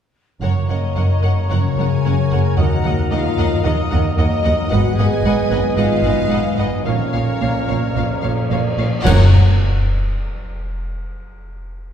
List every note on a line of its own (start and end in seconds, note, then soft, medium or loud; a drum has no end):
0.41 0.50 F#1 soft
0.41 2.60 F#2 soft
0.41 0.50 F#2 soft
0.41 1.47 F#3 soft
0.41 1.47 A#3 soft
0.41 0.54 C#4 medium
0.41 4.67 A#4 soft
0.41 0.50 A#4 soft
0.41 1.46 C#5 soft
0.41 2.59 C#5 soft
0.41 0.51 C#5 soft
0.41 0.68 C#5 medium
0.41 0.51 F#5 soft
0.41 4.67 A#5 soft
0.55 1.62 F#3 soft
0.68 0.78 F#1 soft
0.68 0.77 F#2 soft
0.68 1.49 D#4 medium
0.68 1.22 A#4 soft
0.68 0.78 A#4 soft
0.68 0.78 C#5 soft
0.68 1.50 D#5 medium
0.68 0.78 F#5 soft
0.82 1.90 C#5 soft
0.96 1.05 F#1 soft
0.96 1.05 F#2 soft
0.96 1.04 A#4 soft
0.96 1.04 C#5 soft
0.96 1.04 F#5 soft
0.96 2.03 A#5 soft
1.10 2.17 F#4 soft
1.22 1.32 F#1 soft
1.22 1.32 F#2 soft
1.22 1.30 A#4 soft
1.22 1.76 A#4 soft
1.22 1.31 C#5 soft
1.22 1.32 F#5 soft
1.36 2.44 C#4 soft
1.48 1.58 F#1 soft
1.48 2.60 C#3 soft
1.48 2.56 F#3 soft
1.48 2.56 A#3 soft
1.48 1.76 C#4 medium
1.48 1.58 A#4 soft
1.48 1.58 C#5 soft
1.48 2.56 C#5 soft
1.48 1.78 C#5 medium
1.48 1.58 F#5 soft
1.52 1.60 F#2 soft
1.63 3.64 F#3 soft
1.77 1.85 F#1 soft
1.77 1.87 F#2 medium
1.77 2.58 G#4 medium
1.77 2.30 A#4 soft
1.77 1.86 A#4 soft
1.77 1.87 C#5 soft
1.77 1.88 F#5 soft
1.77 2.60 G#5 medium
1.91 2.60 C#5 soft
2.04 2.13 F#1 soft
2.04 2.14 F#2 medium
2.04 2.12 A#4 soft
2.04 2.12 C#5 soft
2.04 2.14 F#5 soft
2.04 2.96 A#5 soft
2.18 2.84 F#4 soft
2.31 2.39 F#1 soft
2.31 2.41 F#2 soft
2.31 3.50 A#4 soft
2.31 2.40 A#4 soft
2.31 2.40 C#5 soft
2.31 2.40 F#5 soft
2.45 2.61 C#4 soft
2.57 2.65 D#2 medium
2.57 2.67 D#2 medium
2.57 4.74 D#3 medium
2.57 3.61 F#3 medium
2.57 3.62 A#3 medium
2.57 3.11 F#4 medium
2.57 2.67 A#4 soft
2.57 6.88 D#5 medium
2.57 3.63 D#5 medium
2.57 2.67 D#5 soft
2.57 2.65 F#5 soft
2.57 3.12 F#5 medium
2.72 3.78 D#4 soft
2.84 2.92 D#2 medium
2.84 2.93 D#2 medium
2.84 3.38 F#4 soft
2.84 2.94 A#4 soft
2.84 2.93 D#5 soft
2.84 2.92 F#5 soft
2.98 4.04 A#5 soft
3.11 3.19 D#2 medium
3.11 3.20 D#2 medium
3.11 3.64 F4 medium
3.11 3.19 A#4 medium
3.11 3.19 D#5 medium
3.11 3.65 F5 medium
3.11 3.20 F#5 medium
3.25 4.30 D#5 medium
3.37 3.45 D#2 medium
3.37 3.46 D#2 medium
3.37 3.90 F#4 medium
3.37 3.46 A#4 medium
3.37 3.46 D#5 soft
3.37 3.47 F#5 medium
3.52 4.57 A#4 soft
3.63 3.72 D#2 medium
3.63 3.74 D#2 medium
3.63 4.16 F#3 medium
3.63 4.83 F#3 soft
3.63 4.16 A#3 medium
3.63 4.17 D#4 medium
3.63 3.73 A#4 medium
3.63 4.17 D#5 medium
3.63 3.73 D#5 medium
3.63 4.17 D#5 medium
3.63 3.71 F#5 medium
3.79 5.64 D#4 soft
3.91 4.00 D#2 medium
3.91 4.44 F#4 medium
3.91 4.00 A#4 soft
3.91 4.00 D#5 medium
3.91 3.99 F#5 medium
4.05 4.74 A#5 soft
4.18 4.27 D#2 medium
4.18 4.28 D#2 medium
4.18 4.70 F#3 medium
4.18 4.70 A#3 medium
4.18 4.70 D#4 medium
4.18 4.26 A#4 medium
4.18 4.26 D#5 medium
4.18 4.71 D#5 medium
4.18 4.70 D#5 medium
4.18 4.26 F#5 soft
4.32 5.10 D#5 soft
4.44 4.53 D#2 medium
4.44 4.54 D#2 medium
4.44 5.37 F#4 medium
4.44 4.52 A#4 medium
4.44 4.52 D#5 medium
4.44 4.53 F#5 medium
4.58 4.74 A#4 soft
4.69 4.81 G#1 medium
4.69 6.88 G#2 medium
4.69 4.80 G#2 medium
4.69 6.82 F#3 medium
4.69 6.86 B3 medium
4.69 4.97 F#4 medium
4.69 6.81 B4 medium
4.69 4.80 B4 medium
4.69 6.82 D#5 medium
4.69 4.80 D#5 medium
4.69 4.79 F#5 medium
4.69 4.99 F#5 medium
4.69 6.82 G#5 medium
4.85 5.90 F#3 medium
4.94 5.76 G#4 loud
4.98 5.06 G#1 medium
4.98 5.07 G#2 medium
4.98 5.51 B4 medium
4.98 5.08 B4 medium
4.98 5.08 D#5 medium
4.98 5.07 F#5 medium
4.98 5.76 G#5 medium
5.11 6.16 D#5 medium
5.24 5.32 G#1 medium
5.24 5.33 G#2 medium
5.24 5.34 B4 medium
5.24 5.34 D#5 medium
5.24 5.33 F#5 medium
5.24 6.29 B5 medium
5.38 6.43 F#4 medium
5.51 5.59 G#1 medium
5.51 5.59 G#2 medium
5.51 5.60 B4 medium
5.51 6.03 B4 medium
5.51 5.60 D#5 medium
5.51 5.59 F#5 soft
5.65 6.71 D#4 soft
5.76 5.85 G#1 medium
5.76 5.84 G#2 medium
5.76 6.89 D#3 soft
5.76 6.57 F4 medium
5.76 5.86 B4 medium
5.76 5.86 D#5 medium
5.76 6.57 F5 medium
5.76 5.85 F#5 medium
5.91 6.88 F#3 soft
6.03 6.11 G#1 medium
6.03 6.12 G#2 medium
6.03 6.57 B4 soft
6.03 6.14 B4 soft
6.03 6.14 D#5 soft
6.03 6.11 F#5 soft
6.17 6.88 D#5 soft
6.29 6.40 G#1 medium
6.29 6.39 G#2 medium
6.29 6.40 B4 medium
6.29 6.40 D#5 medium
6.29 6.37 F#5 soft
6.29 6.88 B5 medium
6.44 6.88 F#4 soft
6.58 6.66 G#1 soft
6.58 6.66 G#2 soft
6.58 6.86 D#4 medium
6.58 6.88 B4 soft
6.58 6.68 B4 soft
6.58 6.86 D#5 medium
6.58 6.67 D#5 soft
6.58 6.67 F#5 soft
6.72 6.88 D#4 soft
6.84 6.94 A#1 medium
6.84 9.07 A#2 medium
6.84 6.94 A#2 soft
6.84 8.74 F3 medium
6.84 8.74 A#3 medium
6.84 8.79 C#4 medium
6.84 8.74 A#4 medium
6.84 8.74 C#5 medium
6.84 6.96 C#5 soft
6.84 8.74 F5 medium
6.84 6.94 F5 soft
6.84 8.79 F5 soft
6.84 8.74 A#5 medium
7.00 8.09 F3 soft
7.13 7.22 A#1 soft
7.13 7.22 A#2 soft
7.13 7.23 C#5 soft
7.13 7.21 F5 soft
7.26 8.36 C#5 soft
7.41 7.50 A#1 soft
7.41 7.49 A#2 medium
7.41 7.49 C#5 soft
7.41 7.49 F5 soft
7.41 8.50 A#5 soft
7.55 8.63 F4 soft
7.67 7.75 A#1 medium
7.67 7.78 A#2 soft
7.67 8.22 A#4 soft
7.67 7.77 C#5 soft
7.67 7.76 F5 soft
7.82 8.92 C#4 soft
7.95 8.03 A#1 medium
7.95 8.04 A#2 medium
7.95 11.23 A#3 soft
7.95 8.04 C#5 medium
7.95 8.05 F5 soft
8.10 9.08 F3 soft
8.22 8.32 A#1 soft
8.22 8.32 A#2 medium
8.22 8.78 A#4 soft
8.22 8.32 C#5 soft
8.22 8.30 F5 soft
8.37 9.05 C#5 soft
8.50 8.58 A#1 medium
8.50 8.59 A#2 medium
8.50 8.60 C#5 medium
8.50 8.60 F5 soft
8.50 11.23 A#5 soft
8.65 9.08 F4 soft
8.77 8.85 A#1 soft
8.77 8.87 A#2 medium
8.77 9.05 A#4 soft
8.77 8.87 C#5 soft
8.77 8.87 F5 soft
8.93 9.05 C#4 soft
9.03 9.35 F#1 loud
9.03 9.36 F#2 medium
9.03 9.27 C#3 medium
9.03 9.36 F#3 medium
9.03 9.27 A#3 medium
9.03 9.36 C#4 medium
9.03 9.29 F#4 loud
9.03 9.36 A#4 medium
9.03 9.27 C#5 medium
9.03 9.35 F#5 medium
9.03 9.28 F#5 medium
9.03 9.36 F#5 medium
9.03 9.36 A#5 medium
9.03 concert bass drum medium
9.03 crash medium
9.07 9.36 A#4 medium
9.07 9.36 C#5 medium